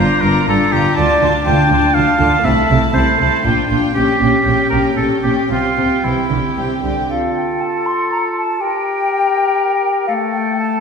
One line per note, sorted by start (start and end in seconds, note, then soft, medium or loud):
0.00 0.23 D4 medium
0.00 0.21 F4 soft
0.00 0.23 C5 medium
0.00 0.23 A#5 soft
0.22 0.31 G1 soft
0.22 0.32 G2 soft
0.22 0.47 D4 soft
0.22 0.46 F4 soft
0.22 0.48 A#4 medium
0.22 0.49 A#5 soft
0.48 0.56 G1 soft
0.48 0.57 G2 soft
0.48 0.73 D4 soft
0.48 0.72 F4 soft
0.48 0.74 A4 medium
0.48 0.73 A#5 soft
0.73 0.81 G1 soft
0.73 0.82 G2 soft
0.73 0.96 D4 soft
0.73 0.97 F4 soft
0.73 0.96 G4 medium
0.73 0.98 A#5 soft
0.96 1.06 D2 soft
0.96 1.06 D3 medium
0.96 1.21 D4 soft
0.96 1.20 F4 medium
0.96 1.28 D5 medium
0.96 1.21 A5 soft
1.21 1.30 D2 soft
1.21 1.31 D3 soft
1.21 1.46 D4 soft
1.21 1.45 F4 soft
1.21 1.46 A5 soft
1.46 1.55 D2 medium
1.46 1.54 D3 soft
1.46 1.70 D4 soft
1.46 1.69 F4 soft
1.46 1.95 G5 medium
1.46 1.71 A5 soft
1.71 1.80 D2 soft
1.71 1.79 D3 soft
1.71 1.94 D4 soft
1.71 1.94 F4 soft
1.71 1.95 A5 soft
1.94 2.05 D2 soft
1.94 2.04 D3 soft
1.94 2.19 D4 soft
1.94 2.18 F4 soft
1.94 2.46 F5 medium
1.94 2.19 A5 soft
2.19 2.28 D2 soft
2.19 2.28 D3 soft
2.19 2.45 D4 soft
2.19 2.44 F4 soft
2.19 2.45 A5 soft
2.44 2.53 C2 soft
2.44 2.53 C3 medium
2.44 2.69 A3 soft
2.44 2.68 E4 medium
2.44 2.93 E5 medium
2.44 2.69 A5 soft
2.70 2.78 C2 soft
2.70 2.78 C3 medium
2.70 2.94 A3 soft
2.70 2.94 E4 soft
2.70 2.94 A5 soft
2.94 3.03 C2 soft
2.94 3.02 C3 soft
2.94 3.18 A3 soft
2.94 3.20 E4 soft
2.94 3.68 C5 medium
2.94 3.18 A5 soft
3.19 3.28 C2 soft
3.19 3.28 C3 soft
3.19 3.44 A3 soft
3.19 3.45 E4 soft
3.19 3.44 A5 soft
3.45 3.53 A#1 soft
3.45 3.53 A#2 soft
3.45 3.68 D4 soft
3.45 3.70 F4 soft
3.45 3.70 G5 soft
3.69 3.78 A#1 soft
3.69 3.79 A#2 soft
3.69 3.94 D4 soft
3.69 3.95 F4 soft
3.69 3.95 G5 soft
3.95 4.04 A#1 soft
3.95 4.05 A#2 soft
3.95 4.19 C#4 soft
3.95 4.67 G4 medium
3.95 4.20 G4 soft
3.95 4.21 G5 soft
4.20 4.29 A#1 soft
4.20 4.29 A#2 soft
4.20 4.45 C#4 soft
4.20 4.44 G4 soft
4.20 4.46 G5 soft
4.46 4.54 A#1 soft
4.46 4.54 A#2 soft
4.46 4.70 C#4 soft
4.46 4.71 G4 soft
4.46 4.72 G5 soft
4.70 4.80 A#1 soft
4.70 4.80 A#2 soft
4.70 4.96 C#4 soft
4.70 4.95 G4 soft
4.70 4.82 A#4 soft
4.70 4.97 G5 soft
4.96 5.06 A#1 soft
4.96 5.06 A#2 soft
4.96 5.23 C#4 soft
4.96 5.23 G4 soft
4.96 5.09 A4 medium
4.96 5.24 G5 soft
5.23 5.31 A#1 soft
5.23 5.32 A#2 soft
5.23 5.50 C#4 soft
5.23 5.35 G4 soft
5.23 5.50 G4 soft
5.23 5.51 G5 soft
5.50 5.59 C2 soft
5.50 5.58 C3 soft
5.50 5.77 C4 soft
5.50 6.06 F4 medium
5.50 5.76 G4 soft
5.50 5.77 G5 soft
5.77 5.86 C2 soft
5.77 5.86 C3 soft
5.77 6.03 C4 soft
5.77 6.03 G4 soft
5.77 6.04 G5 soft
6.04 6.12 C2 soft
6.04 6.12 E3 soft
6.04 6.30 C4 soft
6.04 6.84 E4 soft
6.04 6.29 G4 soft
6.04 6.30 G5 soft
6.30 6.38 C2 soft
6.30 6.38 D3 soft
6.30 6.56 C4 soft
6.30 6.56 G4 soft
6.30 6.56 G5 soft
6.57 6.65 C2 soft
6.57 6.84 C3 soft
6.57 6.83 C4 soft
6.57 6.81 G4 soft
6.57 6.84 G5 soft
6.82 6.92 C2 soft
6.82 7.10 D3 soft
6.82 7.10 C4 soft
6.82 7.09 G4 soft
6.82 7.11 G5 soft
7.09 8.62 F4 soft
7.09 8.57 A4 soft
7.09 7.34 F5 soft
7.36 7.62 G5 soft
7.61 7.88 A5 medium
7.86 8.11 C6 medium
8.12 8.18 A#5 medium
8.36 8.63 A5 medium
8.60 10.07 G4 soft
8.60 10.05 A#4 soft
8.60 10.07 G5 medium
10.07 10.80 A3 soft
10.07 10.80 A4 medium
10.07 10.13 F5 medium
10.32 10.57 G5 medium
10.57 10.80 A5 medium